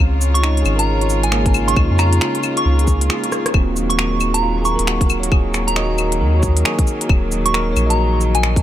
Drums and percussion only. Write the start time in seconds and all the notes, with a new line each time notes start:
0.21 cabasa
0.35 closed hi-hat
0.43 finger snap
0.57 closed hi-hat
0.66 cabasa, claves
0.79 closed hi-hat
1.01 closed hi-hat
1.10 cabasa
1.23 closed hi-hat
1.32 finger snap
1.46 kick, closed hi-hat
1.54 cabasa, claves
1.68 closed hi-hat
1.77 kick, claves
1.99 finger snap, cabasa, claves
2.13 closed hi-hat
2.21 finger snap
2.35 closed hi-hat
2.43 cabasa, claves
2.57 closed hi-hat
2.79 closed hi-hat
2.87 kick, cabasa
3.01 closed hi-hat
3.10 finger snap
3.24 closed hi-hat
3.32 cross-stick, cabasa
3.46 cross-stick, closed hi-hat
3.54 kick, claves
3.77 cabasa
3.90 closed hi-hat
3.99 finger snap
4.21 cabasa, claves
4.34 closed hi-hat
4.65 cabasa
4.79 closed hi-hat
4.87 finger snap
5.01 kick, closed hi-hat
5.10 cabasa, claves
5.23 closed hi-hat
5.32 kick, claves
5.54 finger snap, cabasa
5.68 closed hi-hat
5.76 finger snap
5.98 cabasa, claves
6.12 closed hi-hat
6.43 kick, cabasa
6.57 closed hi-hat
6.65 finger snap
6.79 kick, closed hi-hat
6.87 cabasa
7.01 closed hi-hat
7.09 kick, claves
7.32 cabasa
7.46 closed hi-hat
7.54 finger snap
7.77 cabasa, claves
7.90 closed hi-hat
8.21 cabasa
8.35 closed hi-hat
8.43 finger snap
8.56 kick, closed hi-hat